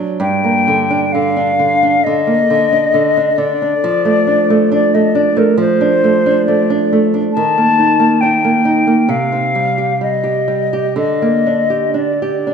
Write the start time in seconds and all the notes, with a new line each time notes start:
Already playing: F#3 D4
0.20 G2 G5
0.44 A#3
0.68 D3
0.90 D4
1.13 D3 F5
1.37 D4
1.59 D3
1.83 D4
2.04 D3 D#5
2.27 A#3
2.50 D3
2.72 D4
2.94 D3
3.17 D4
3.38 D3 D5
3.62 D4
3.84 F3
4.05 A3
4.27 D4
4.50 A3
4.72 D4 D5
4.94 A3 D#5
5.15 D4 D5
5.37 A3 A#4
5.57 F3 C5
5.81 D4
6.04 A3
6.26 D4
6.47 A3 D5
6.70 D4
6.93 A3
7.14 D4
7.33 D#3 A5
7.58 A#3
7.79 D#4
8.00 A#3
8.21 D#4 G5
8.45 A#3
8.65 D#4
8.87 A#3
9.09 C3 F5
9.32 C4
9.55 G3
9.78 G4
10.01 G3 D#5
10.24 G4
10.48 G3
10.73 G4
10.96 D3 D#5
11.22 A#3
11.47 D4
11.70 G4
11.94 D4
11.98 D5
12.22 G4
12.47 D4